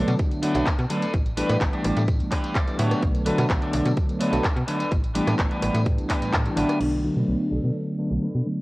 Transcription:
Already playing: tine electric piano D3 F#3 A3 B3 D4, clean electric guitar D4 A4 D5
0.08 fm bass B2, closed hi-hat, tambourine
0.19 kick, closed hi-hat, tambourine
0.31 closed hi-hat, tambourine
0.42 tine electric piano D3 F#3 A3 B3 D4, clean electric guitar D4 A4 B4, open hi-hat
0.54 fm bass B1, tine electric piano D3 F#3 A3 B3 D4, closed hi-hat, tambourine
0.66 kick, clap, closed hi-hat, tambourine
0.79 fm bass B2, closed hi-hat, tambourine
0.90 tine electric piano D3 F#3 A3 B3 D4, clean electric guitar D4 A4 B4, open hi-hat
1.02 closed hi-hat, tambourine
1.14 fm bass A1, kick, closed hi-hat
1.26 closed hi-hat, tambourine
1.37 tine electric piano E3 G3 A3 B3 D4, clean electric guitar D4 G4 B4, open hi-hat
1.49 fm bass A2, tine electric piano E3 G3 A3 B3 D4, cross-stick, closed hi-hat, tambourine
1.61 fm bass A1, kick, clap, closed hi-hat
1.73 clean electric guitar D4 G4 D5, closed hi-hat, tambourine
1.84 fm bass A1, cross-stick, open hi-hat
1.97 fm bass A2, closed hi-hat, tambourine
2.08 kick, closed hi-hat, tambourine
2.19 fm bass A1, closed hi-hat, tambourine
2.31 clean electric guitar D4 G4 B4, kick, clap, open hi-hat
2.44 closed hi-hat, tambourine
2.55 clean electric guitar D5, kick, clap, closed hi-hat, tambourine
2.67 tine electric piano E3 G3 A3 B3 D4, closed hi-hat, tambourine
2.79 fm bass A2, tine electric piano D3 F#3 A3 B3 D4, clean electric guitar D4 G4 C#5 F#5, open hi-hat
2.91 cross-stick, closed hi-hat, tambourine
3.03 fm bass B1, kick, closed hi-hat
3.14 closed hi-hat, tambourine
3.26 tine electric piano D3 F#3 A3 B3 D4, clean electric guitar D4 A4 B4, open hi-hat
3.38 fm bass B2, tine electric piano D3 F#3 A3 B3 D4, cross-stick, closed hi-hat, tambourine
3.50 fm bass B1, kick, clap, closed hi-hat, tambourine
3.62 clean electric guitar D4 A4 D5, closed hi-hat, tambourine
3.73 fm bass B1, open hi-hat
3.86 fm bass B2, closed hi-hat, tambourine
3.97 kick, closed hi-hat, tambourine
4.09 closed hi-hat, tambourine
4.20 tine electric piano D3 F#3 A3 B3 D4, clean electric guitar D4 A4 B4, open hi-hat
4.32 fm bass B1, tine electric piano D3 F#3 A3 B3 D4, closed hi-hat, tambourine
4.44 kick, clap, closed hi-hat, tambourine
4.56 fm bass B2, closed hi-hat, tambourine
4.67 tine electric piano D3 F#3 A3 B3 D4, clean electric guitar D4 A4 B4, open hi-hat
4.80 closed hi-hat, tambourine
4.91 fm bass A1, kick, closed hi-hat, tambourine
5.04 closed hi-hat, tambourine
5.15 tine electric piano E3 G3 A3 B3 D4, clean electric guitar D4 G4 B4, open hi-hat
5.27 fm bass A2, tine electric piano E3 G3 A3 B3 D4, cross-stick, closed hi-hat, tambourine
5.38 fm bass A1, kick, clap, closed hi-hat, tambourine
5.51 clean electric guitar D4 G4 B4, closed hi-hat, tambourine
5.62 fm bass A1, cross-stick, open hi-hat
5.74 fm bass A2, closed hi-hat, tambourine
5.85 kick, closed hi-hat, tambourine
5.98 fm bass A1, closed hi-hat, tambourine
6.09 clean electric guitar D4 G4 B4, kick, clap, open hi-hat
6.22 fm bass A2, closed hi-hat, tambourine
6.33 fm bass A2, kick, clap, closed hi-hat, tambourine
6.45 tine electric piano E3 G3 A3 B3 D4, closed hi-hat, tambourine
6.56 fm bass A1, tine electric piano D3 F#3 A3 B3 D4, clean electric guitar D4 G4 B4, open hi-hat
6.69 cross-stick, closed hi-hat, tambourine
6.80 fm bass B1, crash
7.04 tine electric piano D3 F#3 A3 B3 D4
7.15 fm bass B2, tine electric piano D3 F#3 A3 B3 D4, clean electric guitar D4 A4 B4
7.28 fm bass B1
7.51 fm bass B1, clean electric guitar D4 A4 D5, horn section A4
7.64 fm bass B2
7.98 tine electric piano D3 F#3 A3 B3 D4, clean electric guitar D4 A4 B4
8.11 fm bass B1, tine electric piano D3 F#3 A3 B3 D4
8.22 clean electric guitar D4 A4 B4
8.35 fm bass B2
8.46 tine electric piano D3 F#3 A3 B3 D4

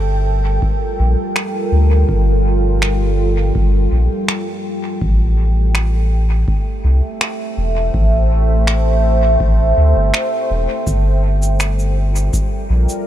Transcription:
Already playing: sub bass G1, ambient pad G3 F4 A4 A#4 C5 E5 G5
0.62 kick
0.99 sub bass A#1
1.36 finger snap
1.72 sub bass D2
2.09 sub bass G1, kick
2.82 finger snap
3.55 sub bass G1, kick
3.92 sub bass A#1
4.28 finger snap
5.01 sub bass A1, ambient pad A3, kick
5.75 finger snap
5.84 ambient pad C5
5.90 ambient pad E5
6.48 kick
6.84 sub bass C2
7.21 finger snap
7.57 sub bass E1
7.94 sub bass A1, kick
8.67 finger snap
9.40 sub bass A1, kick
9.77 sub bass D2
9.96 sub bass G1
10.14 finger snap
10.50 sub bass E1
10.87 sub bass G1, ambient pad G3, kick, cabasa
11.07 ambient pad F4
11.42 cabasa
11.60 finger snap, cabasa
11.79 cabasa
11.87 ambient pad A#4
12.16 cabasa
12.33 kick, cabasa
12.70 sub bass A#1
12.89 cabasa

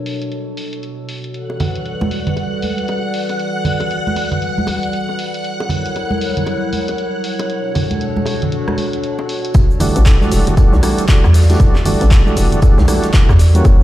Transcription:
Already playing: ambient pad B2 D4 F#4 A4 C#5
0.06 open hi-hat
0.22 closed hi-hat
0.32 closed hi-hat
0.57 open hi-hat
0.73 closed hi-hat
0.83 closed hi-hat
1.09 open hi-hat
1.24 closed hi-hat
1.34 ambient pad E3 G3 B4 D5, string machine F#5 F#6, closed hi-hat
1.50 high bongo
1.60 open hi-hat, low conga
1.75 closed hi-hat
1.86 closed hi-hat
2.01 high bongo, high conga
2.11 open hi-hat
2.27 closed hi-hat, low conga
2.36 closed hi-hat, high bongo
2.62 open hi-hat, high conga
2.78 closed hi-hat
2.88 closed hi-hat, high bongo
3.14 open hi-hat
3.29 closed hi-hat, high bongo
3.39 closed hi-hat
3.65 open hi-hat, low conga
3.80 closed hi-hat, high bongo
3.91 closed hi-hat
4.07 high conga
4.16 open hi-hat, high bongo
4.32 closed hi-hat, low conga
4.42 closed hi-hat
4.58 high conga
4.67 open hi-hat, high bongo, high conga
4.83 closed hi-hat
4.93 closed hi-hat
5.09 high bongo
5.19 open hi-hat
5.34 closed hi-hat
5.44 ambient pad F#3 E4 A#4 C#5, closed hi-hat
5.60 high bongo
5.69 open hi-hat, low conga
5.86 closed hi-hat
5.96 closed hi-hat, high bongo
6.11 high conga
6.21 open hi-hat
6.37 closed hi-hat, low conga
6.46 closed hi-hat, high bongo
6.73 open hi-hat, high conga
6.88 closed hi-hat, high bongo
6.98 closed hi-hat
7.24 open hi-hat
7.39 closed hi-hat, high bongo
7.50 ambient pad B2 D4 F#4 A4, closed hi-hat
7.75 open hi-hat, high bongo, low conga
7.91 closed hi-hat, high conga
8.01 closed hi-hat
8.17 high conga
8.26 open hi-hat, high bongo
8.42 closed hi-hat, low conga
8.52 closed hi-hat
8.68 cross-stick, high bongo, high conga
8.78 open hi-hat, high conga
8.93 closed hi-hat
9.04 closed hi-hat
9.19 high bongo
9.29 open hi-hat
9.45 closed hi-hat
9.54 fm bass E1, ambient pad G3 F#4 A4 D5, kick, closed hi-hat, tambourine, high bongo, shaker
9.71 shaker
9.80 tonewheel organ E3 G3 A3 D4 F#4, open hi-hat, tambourine, high bongo, low conga, shaker
9.96 fm bass A1, closed hi-hat, shaker
10.06 kick, snare, clap, closed hi-hat, tambourine, shaker
10.21 tonewheel organ E3 G3 A3 D4 F#4, snare, high bongo, high conga, shaker
10.32 fm bass E1, snare, open hi-hat, tambourine, shaker
10.47 closed hi-hat, high bongo, low conga, shaker
10.57 tonewheel organ E3 G3 A3 D4 F#4, kick, closed hi-hat, tambourine, shaker
10.73 fm bass B1, snare, shaker
10.82 tonewheel organ E3 G3 A3 D4 F#4, cross-stick, open hi-hat, tambourine, high bongo, high conga, shaker
10.98 closed hi-hat, shaker
11.08 tonewheel organ E3 G3 A3 D4 F#4, kick, snare, clap, closed hi-hat, tambourine, high bongo, shaker
11.24 fm bass E2, cross-stick, shaker
11.34 snare, open hi-hat, tambourine, shaker
11.42 snare, tambourine
11.49 tonewheel organ E3 G3 A3 D4 F#4, snare, closed hi-hat, tambourine, high bongo, shaker
11.55 snare, tambourine
11.60 fm bass E1, kick, closed hi-hat, tambourine, shaker
11.75 clap, high bongo, shaker
11.85 tonewheel organ E3 G3 A3 D4 F#4, open hi-hat, tambourine, low conga, shaker
12.01 fm bass A1, closed hi-hat, shaker
12.11 kick, snare, clap, closed hi-hat, tambourine, high bongo, shaker
12.26 tonewheel organ E3 G3 A3 D4 F#4, high conga, shaker
12.36 fm bass E1, open hi-hat, tambourine, high bongo, shaker
12.52 closed hi-hat, low conga, shaker
12.62 tonewheel organ E3 G3 A3 D4 F#4, kick, closed hi-hat, tambourine, shaker
12.78 fm bass B1, snare, high bongo, high conga, shaker
12.88 tonewheel organ E3 G3 A3 D4 F#4, cross-stick, open hi-hat, tambourine, high conga, shaker
13.03 snare, closed hi-hat, high bongo, shaker
13.13 tonewheel organ E3 G3 A3 D4 F#4, kick, snare, clap, closed hi-hat, tambourine, shaker
13.29 fm bass E2, kick, cross-stick, shaker
13.39 snare, open hi-hat, tambourine, high bongo, shaker
13.55 tonewheel organ E3 G3 A#3 C#4 F#4, closed hi-hat, shaker
13.65 fm bass F#1, ambient pad G3 E4 A#4 C#5, kick, closed hi-hat, tambourine, high bongo, shaker

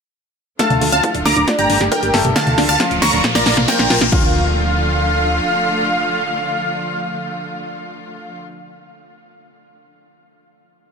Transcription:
0.59 string section D3 F3 A3 F4, grand piano A3 A4, synth pluck D4, supersaw synth F5 A5, digital synth lead A5, kick, snare, closed hi-hat, riser
0.70 fm bass D2, synth pluck D4, closed hi-hat, mid tom
0.81 fm bass D2, synth pluck A3, open hi-hat
0.92 fm bass D2, synth pluck C#4, supersaw synth F5 A5, digital synth lead A5, closed hi-hat
1.03 synth pluck E4, kick, closed hi-hat
1.15 fm bass D1, synth pluck D4, closed hi-hat
1.25 fm bass D2, synth pluck D4, supersaw synth A#5 D6, digital synth lead D6, snare, open hi-hat
1.37 fm bass D1, synth pluck D4, closed hi-hat
1.48 string section A#3 G4, grand piano D4 D5, synth pluck F4, kick, snare, closed hi-hat
1.59 fm bass G1, synth pluck G3, supersaw synth G5 A#5, digital synth lead A#5, closed hi-hat
1.70 fm bass G1, synth pluck D4, open hi-hat
1.81 fm bass G1, synth pluck G4, snare, closed hi-hat
1.92 synth pluck A4, supersaw synth A#4 G5, digital synth lead G5, kick, closed hi-hat
2.03 fm bass G1, synth pluck G4, closed hi-hat
2.14 fm bass G1, grand piano A3 A4, synth pluck G4, snare, open hi-hat
2.25 fm bass G1, synth pluck G4, closed hi-hat, mid tom
2.36 synth pluck D3, string section F3 A3 F4, supersaw synth F5 A5, digital synth lead A5, kick, snare, closed hi-hat
2.47 fm bass D2, synth pluck A4, closed hi-hat, mid tom
2.58 fm bass D2, synth pluck D4, snare, open hi-hat
2.69 fm bass D2, synth pluck D5, supersaw synth F5 A5, digital synth lead A5, closed hi-hat
2.80 grand piano F3 F4, synth pluck C#4, kick, snare, closed hi-hat
2.91 fm bass D1, synth pluck F4, closed hi-hat
3.02 fm bass D2, synth pluck D4, supersaw synth A#5 C#6, digital synth lead C#6, snare, open hi-hat
3.13 fm bass D1, synth pluck D4, closed hi-hat
3.24 synth pluck A#2, string section A#3, kick, snare, closed hi-hat
3.35 fm bass A#1, synth pluck A#4, supersaw synth D5 A#5, digital synth lead A#5, snare, closed hi-hat
3.46 fm bass A#1, synth pluck A#3, snare, open hi-hat
3.57 fm bass A#1, synth pluck A#3, snare, closed hi-hat, mid tom
3.68 synth pluck A#3, supersaw synth A#4 G5, digital synth lead G5, kick, snare, closed hi-hat
3.79 fm bass A#1, synth pluck D4, snare, closed hi-hat
3.90 fm bass A#1, synth pluck F4, snare, open hi-hat
4.01 fm bass A#1, synth pluck A#3, snare, closed hi-hat
4.12 fm bass D2, string section D3 F3 A3 F4, synth pluck D4, grand piano F4, digital synth lead F5, supersaw synth F5, kick, crash, impact

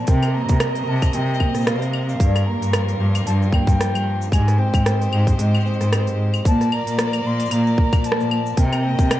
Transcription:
Already playing: twelve-string acoustic guitar A#2 F3 A#3
0.07 cello C3, twelve-string acoustic guitar C3 A#4, string quartet C4 A#4 D#5, flute G5, kick, open hi-hat, shaker
0.23 cross-stick, open hi-hat, claves, shaker
0.28 cross-stick
0.34 twelve-string acoustic guitar A#3, flute A#5, cross-stick
0.41 cross-stick
0.49 cello C3, kick, open hi-hat, shaker
0.60 twelve-string acoustic guitar G3, cross-stick, open hi-hat, claves, shaker
0.75 open hi-hat, shaker
0.87 cello C3, twelve-string acoustic guitar A#4, flute A5
1.02 kick, open hi-hat, claves, shaker
1.13 cello C3, twelve-string acoustic guitar C3, flute G5, open hi-hat, shaker
1.34 shaker
1.40 twelve-string acoustic guitar A#3, kick, claves
1.55 cello A#2, cross-stick, open hi-hat, shaker
1.58 shaker
1.61 shaker
1.64 twelve-string acoustic guitar G3, flute F5, cross-stick, open hi-hat, shaker
1.71 shaker
1.75 shaker
1.78 cello C3, open hi-hat, shaker
1.82 shaker
1.93 claves
2.07 flute F5, shaker
2.20 cello G2, twelve-string acoustic guitar G2 G4, string quartet G3 F4, kick, open hi-hat, shaker
2.36 cross-stick, open hi-hat, claves, shaker
2.46 twelve-string acoustic guitar A#3, flute A#5
2.60 cello G2, open hi-hat, shaker
2.73 twelve-string acoustic guitar F3, cross-stick, open hi-hat, claves, shaker
2.88 open hi-hat, shaker
2.99 cello G2, twelve-string acoustic guitar G4
3.15 open hi-hat, claves, shaker
3.25 cello G2, twelve-string acoustic guitar G2, flute A5, open hi-hat, shaker
3.42 shaker
3.52 twelve-string acoustic guitar A#3, flute G5, kick, claves
3.67 cello G2, kick, open hi-hat, shaker
3.79 twelve-string acoustic guitar F3, cross-stick, open hi-hat, shaker
3.93 cello G2, open hi-hat, claves, shaker
4.22 shaker
4.32 cello G#2, twelve-string acoustic guitar G#3 G4, string quartet G#3 G4 C5, flute G#5, kick, open hi-hat, claves, shaker
4.48 cross-stick, open hi-hat, shaker
4.58 twelve-string acoustic guitar C4, flute G5
4.73 cello G#2, kick, open hi-hat, claves, shaker
4.85 twelve-string acoustic guitar C4, cross-stick, open hi-hat, shaker
5.02 open hi-hat, shaker
5.11 cello G#2, twelve-string acoustic guitar G4, claves
5.27 kick, open hi-hat
5.39 cello G#2, twelve-string acoustic guitar G#3, open hi-hat, shaker
5.55 claves, shaker
5.60 shaker
5.65 twelve-string acoustic guitar C4, shaker
5.73 shaker
5.80 cello G#2, cross-stick, open hi-hat, shaker
5.93 cross-stick, open hi-hat, claves, shaker
6.07 cello G#2, open hi-hat, shaker
6.34 claves, shaker
6.44 cello A#2, twelve-string acoustic guitar A#2, string quartet A#3 A#4 D5, flute A5, kick, open hi-hat, shaker
6.61 cross-stick, open hi-hat, shaker
6.72 twelve-string acoustic guitar A#3, flute A#5, claves
6.86 cello A#2, open hi-hat, shaker
6.99 twelve-string acoustic guitar F3, cross-stick, open hi-hat, shaker
7.13 open hi-hat, claves, shaker
7.25 cello A#2, flute C6
7.40 open hi-hat
7.46 shaker
7.51 cello A#2, twelve-string acoustic guitar A#2, flute A#5, open hi-hat, claves, shaker
7.67 shaker
7.78 twelve-string acoustic guitar A#3, kick
7.92 cello A#2, kick, open hi-hat, claves, shaker
8.04 twelve-string acoustic guitar F3, flute A5, open hi-hat, shaker
8.12 cross-stick
8.19 cello A#2, open hi-hat, shaker
8.31 claves
8.46 shaker
8.56 cello C3, twelve-string acoustic guitar C3 A#4, string quartet C4 A#4 D#5, flute G5, kick, open hi-hat, shaker
8.73 cross-stick, open hi-hat, claves, shaker
8.84 twelve-string acoustic guitar A#3
8.98 cello C3, kick, open hi-hat, shaker
9.10 twelve-string acoustic guitar G3, cross-stick, open hi-hat, claves, shaker

